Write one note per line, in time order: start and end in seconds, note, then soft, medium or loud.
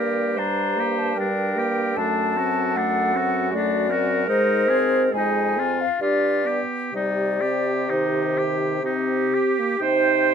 0.00 1.93 G2 soft
0.00 0.39 A#3 soft
0.00 0.41 G4 soft
0.00 0.38 A#4 soft
0.00 0.40 D5 medium
0.37 0.80 G3 soft
0.37 0.81 D4 soft
0.37 1.17 C5 soft
0.37 1.00 A#5 medium
0.78 1.16 A#3 soft
0.78 1.18 G4 soft
0.99 1.19 A5 soft
1.15 1.58 G3 soft
1.15 1.97 A#4 soft
1.15 1.98 G5 medium
1.20 1.60 D4 soft
1.57 1.96 A#3 soft
1.57 1.98 G4 soft
1.96 4.29 F#2 soft
1.96 2.38 A3 soft
1.96 2.40 D4 soft
1.96 3.53 A4 soft
1.96 2.78 A5 medium
2.37 2.77 C4 soft
2.37 2.80 F#4 soft
2.76 3.15 A3 soft
2.76 3.18 D4 soft
2.76 3.52 F#5 medium
3.14 3.51 C4 soft
3.14 3.53 F#4 soft
3.52 3.91 A3 soft
3.52 3.93 D4 soft
3.52 3.88 F#4 medium
3.52 4.26 D5 medium
3.89 4.27 C4 soft
3.89 4.28 F#4 soft
3.89 5.15 A#4 medium
4.27 5.13 G#2 soft
4.27 4.70 G#3 soft
4.27 4.71 D#4 soft
4.27 5.12 C5 medium
4.69 5.12 C4 soft
4.69 5.03 G#4 soft
5.12 5.84 F2 soft
5.12 5.59 G#3 soft
5.12 5.83 G#4 soft
5.12 5.83 G#5 medium
5.16 5.61 D#4 soft
5.58 5.87 C4 soft
5.58 6.02 F4 soft
5.81 6.03 F5 medium
6.00 6.59 G2 soft
6.00 6.47 D4 soft
6.00 6.49 F4 soft
6.00 6.59 G4 soft
6.00 6.61 D5 medium
6.45 6.93 B3 soft
6.45 6.94 G4 soft
6.92 9.41 C3 soft
6.92 7.42 G3 soft
6.92 8.78 G4 soft
6.92 7.93 D5 medium
6.96 7.43 D#4 soft
7.41 7.89 C4 soft
7.41 7.92 G4 soft
7.89 8.79 D#3 soft
7.89 8.40 D#4 soft
7.89 8.84 C5 soft
8.38 8.84 G4 soft
8.83 9.60 C4 soft
8.83 9.36 D#4 soft
8.83 9.83 G4 medium
8.83 9.78 G4 soft
9.35 9.79 G4 soft
9.59 9.79 A#3 soft
9.79 10.34 C3 medium
9.79 10.34 D#4 medium
9.79 10.34 C5 medium
9.79 10.34 G5 medium